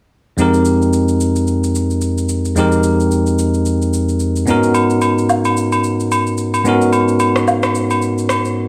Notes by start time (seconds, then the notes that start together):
0.37 F2 G#3 C4 D#4 G4, shaker
0.41 A#4
0.54 shaker
0.65 shaker
0.82 shaker
0.93 shaker
1.08 shaker
1.20 shaker
1.36 shaker
1.47 shaker
1.64 shaker
1.75 shaker
1.90 shaker
2.01 shaker
2.18 shaker
2.29 shaker
2.45 shaker
2.55 F2 G#3 C4 D#4 G4, shaker
2.60 A#4
2.72 shaker
2.83 shaker
3.00 shaker
3.11 shaker
3.26 shaker
3.39 shaker
3.54 shaker
3.65 shaker
3.82 shaker
3.93 shaker
4.09 shaker
4.20 shaker
4.36 shaker
4.46 G#2 B3 C#4 D#4 F#4, shaker
4.50 A#4
4.63 shaker
4.74 high agogo, shaker
4.90 shaker
5.01 high agogo, shaker
5.18 shaker
5.29 low woodblock, shaker
5.45 high agogo, shaker
5.57 shaker
5.72 high agogo, shaker
5.84 shaker
6.00 shaker
6.11 high agogo, shaker
6.27 shaker
6.38 shaker
6.54 high agogo, shaker
6.64 G#2 B3 C#4 D#4 F#4, shaker
6.69 A#4
6.81 shaker
6.93 high agogo, shaker
7.08 shaker
7.20 high agogo, shaker
7.36 cross-stick, shaker
7.48 low woodblock, shaker
7.63 cross-stick, high agogo, shaker
7.75 shaker
7.90 high agogo, shaker
8.02 shaker
8.18 shaker
8.29 cross-stick, high agogo, shaker
8.45 shaker